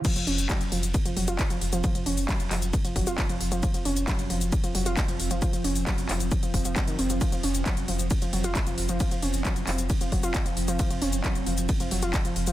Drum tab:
CC |x---------------|----------------|----------------|----------------|
RD |x---x---x---x---|x---x---x---x---|x---x---x---x---|x---x---x---x---|
HH |xxoxxxoxxxoxxxox|xxooxxoxxxoxxxox|xxoxxxoxxxoxxxox|xxooxxoxxxoxxxox|
SH |xx-xxx-xxx-xxx-x|xx-xxx-xxx-xxx-x|xx-xxx-xxx-xxx-x|xx-xxx-xxx-xxx-x|
CP |----x-------x---|----x-x-----x---|----x-------x---|----x-x-----x---|
BD |o---o---o---o---|o---o---o-o-o---|o---o---o---o---|o---o---o-o-o---|

CC |----------------|----------------|----------------|
RD |x---x---x---x---|x---x---x---x---|x---x---x---x---|
HH |xxoxxxoxxxoxxxox|xxooxxoxxxoxxxox|xxoxxxoxxxoxxxox|
SH |xx-xxx-xxx-xxx-x|xx-xxx-xxx-xxx-x|xx-xxx-xxx-xxx-x|
CP |----x-------x---|----x-x-----x---|----x-------x---|
BD |o---o---o---o---|o---o---o-o-o---|o---o---o---o---|